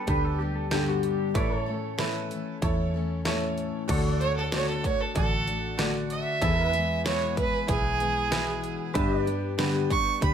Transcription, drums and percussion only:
0.07 kick, closed hi-hat
0.71 snare, closed hi-hat
1.03 closed hi-hat
1.35 kick, closed hi-hat
1.99 snare, closed hi-hat
2.31 closed hi-hat
2.62 kick, closed hi-hat
3.25 snare, closed hi-hat
3.58 closed hi-hat
3.89 kick, closed hi-hat, crash
4.21 closed hi-hat
4.52 snare, closed hi-hat
4.84 kick, closed hi-hat
5.15 kick, closed hi-hat
5.47 closed hi-hat
5.79 snare, closed hi-hat
6.10 closed hi-hat
6.42 kick, closed hi-hat
6.73 closed hi-hat
7.06 snare, closed hi-hat
7.37 kick, closed hi-hat
7.68 kick, closed hi-hat
8.00 closed hi-hat
8.32 snare, closed hi-hat
8.64 closed hi-hat
8.95 kick, closed hi-hat
9.27 closed hi-hat
9.59 snare, closed hi-hat
9.90 kick, closed hi-hat
10.22 kick, closed hi-hat

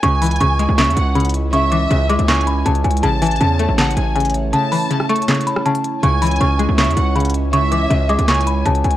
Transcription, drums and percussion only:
0.03 closed hi-hat
0.22 closed hi-hat, open hi-hat
0.27 closed hi-hat
0.31 closed hi-hat
0.36 closed hi-hat
0.41 closed hi-hat
0.59 closed hi-hat
0.78 snare, clap, closed hi-hat
0.84 closed hi-hat
0.91 closed hi-hat
0.97 closed hi-hat
1.16 closed hi-hat
1.20 closed hi-hat
1.25 closed hi-hat
1.30 closed hi-hat
1.34 closed hi-hat
1.53 closed hi-hat
1.72 closed hi-hat
1.91 closed hi-hat
2.09 closed hi-hat
2.19 closed hi-hat
2.28 snare, clap, closed hi-hat
2.34 closed hi-hat
2.41 closed hi-hat
2.47 closed hi-hat
2.66 closed hi-hat
2.75 closed hi-hat
2.84 closed hi-hat
2.91 closed hi-hat
2.97 closed hi-hat
3.03 closed hi-hat
3.22 closed hi-hat, open hi-hat
3.27 closed hi-hat
3.31 closed hi-hat
3.36 closed hi-hat
3.41 closed hi-hat
3.59 closed hi-hat
3.78 snare, clap, closed hi-hat
3.84 closed hi-hat
3.91 closed hi-hat
3.97 closed hi-hat
4.16 closed hi-hat
4.20 closed hi-hat
4.25 closed hi-hat
4.30 closed hi-hat
4.34 closed hi-hat
4.53 closed hi-hat
4.72 open hi-hat
4.91 closed hi-hat
5.00 cross-stick
5.09 closed hi-hat
5.16 closed hi-hat
5.22 closed hi-hat
5.28 snare, clap, closed hi-hat
5.34 closed hi-hat
5.41 closed hi-hat
5.47 closed hi-hat
5.56 cross-stick
5.66 closed hi-hat
5.75 closed hi-hat
5.84 closed hi-hat
6.03 closed hi-hat
6.22 closed hi-hat, open hi-hat
6.27 closed hi-hat
6.31 closed hi-hat
6.36 closed hi-hat
6.41 closed hi-hat
6.59 closed hi-hat
6.78 snare, clap, closed hi-hat
6.84 closed hi-hat
6.91 closed hi-hat
6.97 closed hi-hat
7.16 closed hi-hat
7.20 closed hi-hat
7.25 closed hi-hat
7.30 closed hi-hat
7.34 closed hi-hat
7.53 closed hi-hat
7.72 closed hi-hat
7.91 closed hi-hat
8.09 closed hi-hat
8.19 closed hi-hat
8.28 snare, clap, closed hi-hat
8.34 closed hi-hat
8.41 closed hi-hat
8.47 closed hi-hat
8.66 closed hi-hat
8.75 closed hi-hat
8.84 closed hi-hat
8.91 closed hi-hat

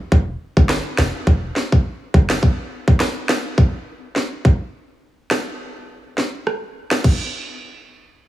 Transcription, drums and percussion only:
0.12 kick
0.57 kick
0.69 cross-stick, snare
0.99 cross-stick, snare
1.27 kick
1.56 snare
1.72 kick
2.14 kick
2.30 cross-stick, snare
2.43 kick
2.88 kick
3.00 cross-stick, snare
3.29 cross-stick, snare
3.58 kick
4.16 snare
4.45 kick
5.31 cross-stick, snare
6.18 snare
6.47 cross-stick
6.91 cross-stick, snare
7.04 kick, crash

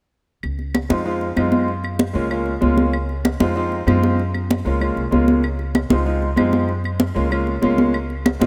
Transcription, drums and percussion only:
0.43 high conga, claves
0.59 high conga
0.74 high conga, claves
0.90 high conga
1.06 high conga
1.21 high conga
1.37 high conga, claves
1.52 high conga
1.68 high conga
1.84 high conga, claves
1.99 high conga
2.15 high conga
2.31 high conga, claves
2.46 high conga
2.62 high conga
2.77 high conga
2.93 high conga, claves
3.09 high conga
3.25 high conga, claves
3.40 high conga
3.56 high conga
3.72 high conga
3.88 high conga, claves
4.03 high conga
4.20 high conga
4.34 high conga, claves
4.51 high conga
4.66 high conga
4.81 high conga, claves
4.97 high conga
5.12 high conga
5.28 high conga
5.43 high conga, claves
5.59 high conga
5.75 high conga, claves
5.90 high conga
6.06 high conga
6.22 high conga
6.37 high conga, claves
6.53 high conga
6.68 high conga
6.84 high conga, claves
7.00 high conga
7.16 high conga
7.32 high conga, claves
7.47 high conga
7.63 high conga
7.78 high conga
7.94 high conga, claves
8.10 high conga
8.26 high conga, claves
8.42 high conga

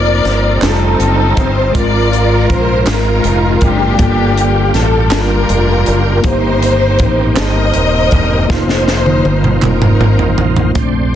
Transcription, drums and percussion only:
0.25 snare, closed hi-hat
0.62 snare, clap, closed hi-hat
1.00 closed hi-hat
1.37 kick, closed hi-hat
1.75 kick, closed hi-hat
2.13 closed hi-hat
2.50 kick, closed hi-hat
2.87 snare, clap, closed hi-hat
3.24 closed hi-hat
3.61 kick, closed hi-hat
3.99 kick, closed hi-hat
4.38 closed hi-hat
4.74 snare, closed hi-hat
5.11 snare, clap, closed hi-hat
5.49 closed hi-hat
5.86 closed hi-hat
6.24 kick, closed hi-hat
6.62 closed hi-hat
6.99 kick, closed hi-hat
7.36 snare, clap, closed hi-hat
7.74 closed hi-hat
8.11 kick, closed hi-hat
8.50 kick, snare
8.69 snare
8.88 snare
9.06 high tom
9.25 high tom
9.44 mid tom
9.62 clap, mid tom
9.82 mid tom
10.01 mid tom
10.19 floor tom
10.38 floor tom
10.56 floor tom
10.75 kick, closed hi-hat

